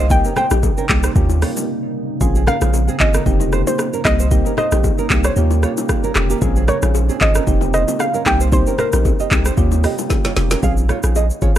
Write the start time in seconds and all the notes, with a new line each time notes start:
Already playing: C2 C3 G3 A#3 D#4 D#5
0.10 A#3 C4 D#4 G4 G5, kick, low conga, shaker
0.25 C#4 A#4, shaker
0.36 D#4 C5 G5, cross-stick, low bongo, low conga, shaker
0.51 A#1 A#3 C4 D#4 G4, cross-stick, low bongo, shaker
0.63 kick, high bongo, shaker
0.78 C#4 A#4, shaker
0.89 C2 A#3 C4 D#4 G4, kick, clap, high bongo, shaker
1.03 D#4 C5, cross-stick, shaker
1.15 D#2 C#3 A#3 C#4 F4 G4, kick, low conga, shaker
1.30 low bongo, shaker
1.42 F4 C#5, cross-stick, open hi-hat, shaker
1.57 low bongo, shaker
2.21 A#1 A#3 C4 C#4 F4 G#4, kick, low conga, shaker
2.35 C4 G#4, shaker
2.47 C#4 A#4 F5, cross-stick, low bongo, low conga, shaker
2.61 A#1 C4 C#4 F4 G#4, cross-stick, low bongo, shaker
2.74 high bongo, shaker
2.88 C4 G#4, shaker
3.00 G#1 C4 C#4 F4 G#4 D#5, kick, clap, high bongo, shaker
3.14 C#4 A#4, cross-stick, shaker
3.26 F1 C3 A#3 C4 D#4 G4, kick, low conga, shaker
3.40 low bongo, shaker
3.53 D#4 C5, cross-stick, shaker
3.67 A#3 C4 D#4 G4 C5, low bongo, shaker
3.78 cross-stick, high bongo, shaker
3.93 C#4 A#4, shaker
4.05 C2 G3 A#3 C4 D#4 G4 D#5, kick, cross-stick, clap, shaker
4.19 D#4 C5, shaker
4.31 A#3 C4 D#4 G4, kick, low conga, shaker
4.46 C#4 A#4, shaker
4.57 D#4 C5 D#5, cross-stick, low bongo, low conga, shaker
4.72 A#1 A#3 C4 D#4 G4, cross-stick, low bongo, shaker
4.84 kick, high bongo, shaker
4.98 C#4 A#4, shaker
5.10 C2 A#3 C4 D#4 G4, kick, clap, high bongo, shaker
5.24 D#4 C5 C#5, cross-stick, shaker
5.36 D#2 C#3 A#3 C#4 F4 G4, low conga, shaker
5.51 low bongo, shaker
5.63 F4 C#5, cross-stick, shaker
5.77 low bongo, shaker
5.89 kick, cross-stick, high bongo, shaker
6.04 C#4 A#4, shaker
6.15 F1 A#3 C#4 F4 G4, cross-stick, clap, shaker
6.30 A#3 G4, shaker
6.41 A#1 C4 C#4 F4 G#4, kick, low conga, shaker
6.56 C4 G#4, shaker
6.68 C#4 A#4 C#5, cross-stick, low bongo, low conga, shaker
6.82 A#1 C4 C#4 F4 G#4, cross-stick, low bongo, shaker
6.95 high bongo, shaker
7.09 C4 G#4, shaker
7.20 G#1 C4 C#4 F4 G#4 D#5, kick, clap, high bongo, shaker
7.35 C#4 A#4, cross-stick, shaker
7.47 F1 A#3 C4 D#4 G4, kick, low conga, shaker
7.61 low bongo, shaker
7.74 D#4 C5 D#5, cross-stick, shaker
7.87 A#3 C4 D#4 G4, low bongo, shaker
7.99 F5, cross-stick, high bongo, shaker
8.14 C#4 A#4, shaker
8.26 C2 C3 G3 A#3 C4 D#4 G4 G5, kick, cross-stick, clap, shaker
8.41 D#4 C5, shaker
8.52 A#3 C4 D#4 G4 C5, kick, low conga, shaker
8.67 C#4 A#4, shaker
8.78 D#4 A#4 C5, cross-stick, low bongo, low conga, shaker
8.93 A#1 A#3 C4 D#4 G4, cross-stick, low bongo, shaker
9.05 kick, high bongo, shaker
9.20 G4 D#5, shaker
9.31 C2 A#3 C4 D#4 G4, kick, clap, high bongo, shaker
9.45 D#4 C5, cross-stick, shaker
9.57 D#2 A#3 C#4 F4 G4, kick, low conga, shaker
9.72 low bongo, shaker
9.84 G4 D#5, cross-stick, open hi-hat, shaker
9.98 low bongo, shaker
10.10 kick, snare, high bongo, shaker
10.25 F4 C#5, snare, shaker
10.36 F1 A#3 C#4 F4 G4, snare, shaker
10.51 C#4 A#4, snare, shaker
10.63 A#1 C4 C#4 F4 G#4 F5, kick, low conga, shaker
10.77 shaker
10.89 F4 C#5, cross-stick, low conga, shaker
11.03 A#1 C4 C#4 F4 G#4, cross-stick, shaker
11.15 G#4 D#5, high bongo, shaker
11.30 shaker
11.41 G#1 C4 C#4 F4 G#4 C#5, kick, high bongo, shaker